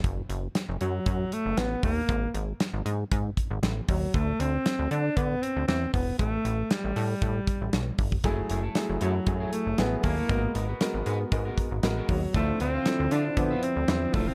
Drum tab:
HH |x-x-x-x-x-x-x-o-|x-x-x-x-x-x-x-o-|x-x-x-x-x-x-x-o-|x-x-x-o-x-x-x-o-|
SD |----o-------o---|----o-------o---|----o-------o---|----o-------o---|
BD |o-------o-----o-|o-------o-o---o-|o-------o-----o-|o-------o-o---oo|

HH |x-x-x-x-x-x-x-o-|x-x-x-x-x-x-x-o-|x-x-x-x-x-x-x-o-|
SD |----o-------o---|----o-------o---|----o-------o---|
BD |o-------o-----o-|o-------o-o---o-|o-------o-----o-|